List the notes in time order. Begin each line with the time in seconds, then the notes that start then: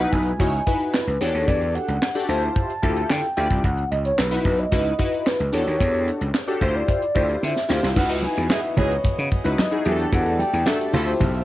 Already playing: F#5
0.00 D#4 E4 F#4 B4
0.12 B1 G#5, kick, open hi-hat
0.26 closed hi-hat
0.39 C#2 D#4 E4 F#4 C#5, kick, closed hi-hat
0.53 closed hi-hat
0.66 D#4 E4 F#4 B4, kick, closed hi-hat
0.80 closed hi-hat
0.93 B4, snare, clap
1.07 C#2, closed hi-hat
1.20 E2 D4 F#4 G4 A4 C#5, closed hi-hat
1.34 D#2, closed hi-hat
1.47 E2 D5, kick, closed hi-hat
1.61 closed hi-hat
1.75 F#5, closed hi-hat
1.88 C#2, closed hi-hat
2.02 snare, clap
2.15 D4 F#4 G4 A4, closed hi-hat
2.29 D2 E4 F4 G4 C5 A5, open hi-hat
2.43 closed hi-hat
2.56 kick, closed hi-hat
2.70 closed hi-hat
2.82 D2 E4 F4 G4 A4, kick, closed hi-hat
2.96 closed hi-hat
3.10 D3 G5, snare, clap
3.24 closed hi-hat
3.37 D2 E4 F4 G4 D5 G5, closed hi-hat
3.51 C2, kick, closed hi-hat
3.64 C#2 F#5, kick, closed hi-hat
3.77 closed hi-hat
3.91 C#2 D#5, closed hi-hat
4.05 C#5, closed hi-hat
4.18 B1 B4, snare, clap
4.31 D#4 E4 F#4 B4, closed hi-hat
4.45 B1, kick, open hi-hat
4.58 D#5, closed hi-hat
4.72 C#2 D#4 E4 F#4 B4, kick, closed hi-hat
4.85 closed hi-hat
4.99 D#4 E4 F#4 B4, kick, closed hi-hat
5.13 closed hi-hat
5.27 B4, snare, clap
5.40 C#2, closed hi-hat
5.52 E2 D4 F#4 G4 A4 C#5, closed hi-hat
5.67 D#2, closed hi-hat
5.80 E2, kick, closed hi-hat
5.94 closed hi-hat
6.08 closed hi-hat
6.21 C#2, closed hi-hat
6.34 snare, clap
6.48 D4 F#4 G4 A4, closed hi-hat
6.61 D2 E4 F4 G4 C5, kick, open hi-hat
6.75 D5, closed hi-hat
6.88 kick, closed hi-hat
7.02 closed hi-hat
7.15 D2 E4 F4 G4 C5, kick, closed hi-hat
7.29 closed hi-hat
7.43 D3 E5, snare
7.56 snare
7.69 D2 E4 F4 G4 C5 F5, snare
7.83 C2, snare
7.96 C#2 E3 B3 D#4 E4 F#4 B4 D#5 F#5, kick, crash, muted conga
8.09 D#4 E4 F#4 B4, closed hi-hat
8.23 G#5, closed hi-hat, muted conga
8.37 E2, closed hi-hat
8.50 E3 G#3 D#4 G#4 E5, snare, clap, high conga
8.64 closed hi-hat
8.77 C#2 E3 G#3 D#4 G#4 C#5, kick, open hi-hat, low conga
8.91 closed hi-hat
9.04 muted slap bass stroke, kick, closed hi-hat, muted conga
9.18 C#3, closed hi-hat
9.31 kick, closed hi-hat, muted conga
9.44 C#2 D#4 E4 F#4 B4, closed hi-hat
9.59 D#5, snare, clap, high conga
9.71 D#4 E4 F#4 G#4, closed hi-hat
9.85 E2 G3 A3 D4 F#4 G4 G#4 A4 E5, closed hi-hat, high conga
9.92 A4
9.99 closed hi-hat
10.12 E2 F#5, kick, closed hi-hat, muted conga
10.26 closed hi-hat
10.39 G5, closed hi-hat, muted conga
10.53 E2, closed hi-hat
10.66 F#3 A3 D4 F#4 G4 A4 E5, snare, clap, high conga
10.81 closed hi-hat
10.93 D2 F3 A3 C4 E4 F4 G4 A4 C5 E5, open hi-hat, low conga
11.07 closed hi-hat
11.20 B1, kick, closed hi-hat, muted conga, low conga
11.34 closed hi-hat